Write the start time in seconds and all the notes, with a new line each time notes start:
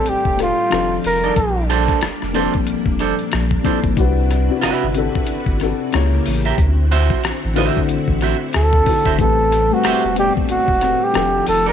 Already playing: A2 G3 A3 C4 G4 A4 C5 D5
0.06 E1 G4, closed hi-hat
0.25 E1, kick
0.37 A2 A3 C4 G4 A4, cross-stick, closed hi-hat
0.42 F4
0.70 F1 D#3 F3 C4 D4 D#4 F4 G4 A4, cross-stick, closed hi-hat
1.04 F1 A#4, open hi-hat
1.24 D#4 A4 D5, closed hi-hat
1.36 A#1 A#3 D4, kick, closed hi-hat
1.70 D4 A4 C5, cross-stick, closed hi-hat
1.88 kick, cross-stick, closed hi-hat
2.01 F1, muted clean electric guitar stroke, cross-stick, closed hi-hat
2.22 F1, cross-stick
2.33 A#2 F3 C4 D4 A4 C5, closed hi-hat
2.54 kick, closed hi-hat
2.67 F1, closed hi-hat
2.86 F1, kick
2.99 D4 A4 C5, cross-stick, closed hi-hat
3.19 closed hi-hat
3.32 A#1, cross-stick, closed hi-hat
3.51 kick
3.64 A#2 F3 C4 D4 E4 A4 C5, kick, closed hi-hat
3.84 G1, kick, closed hi-hat
3.95 C2 C3 C4 D4 E4 F#4 B4, kick, closed hi-hat
4.31 cross-stick, closed hi-hat
4.49 C3 C4 D4 E4 F#4 B4
4.61 G1 F#4 B4 E5, cross-stick, closed hi-hat
4.84 G1
4.95 C3 C4 D4 E4 F#4 A4, closed hi-hat
5.15 kick
5.27 G1, closed hi-hat
5.46 G1, kick
5.60 C3 C4 D4 E4 F#4 A4, cross-stick, closed hi-hat
5.91 C#2 C#3 A#3 E4 G4 C#5, cross-stick, closed hi-hat
6.26 A1, open hi-hat
6.45 G4 A#4 E5, closed hi-hat
6.57 D2 D3 C4 E4 F#4, kick, closed hi-hat
6.91 F#4 C5 E5, cross-stick, closed hi-hat
7.10 kick
7.24 A1, muted clean electric guitar stroke, cross-stick, closed hi-hat
7.45 A1
7.55 D3 A3 E4 F#4 C5 E5, closed hi-hat
7.77 kick
7.89 A1, closed hi-hat
8.08 A1, kick
8.21 F#4 C5 E5, cross-stick, closed hi-hat
8.53 D2 A4, cross-stick, closed hi-hat
8.73 kick
8.86 D3 A3 E4 F#4 A4, kick, open hi-hat
9.05 E1 F#4 C5 E5, kick, closed hi-hat
9.17 A1 A2 G3 A3 C4 G4 A4 B4, kick, closed hi-hat
9.52 cross-stick, closed hi-hat
9.70 A2 G3 A3 C4 F#4 B4
9.84 E1 G4 C5 E5, cross-stick, closed hi-hat
10.05 E1
10.16 A2 A3 B3 G4 D5, closed hi-hat
10.24 C4
10.37 kick
10.49 E1 F#4, closed hi-hat
10.68 E1, kick
10.81 A2 A3 C4 G4 B4, cross-stick, closed hi-hat
11.04 G4
11.13 F1 D#3 F3 C4 D4 D#4 G4 A4, cross-stick, closed hi-hat
11.47 F1 A4, open hi-hat
11.66 D#4 A4 A#4 D5, closed hi-hat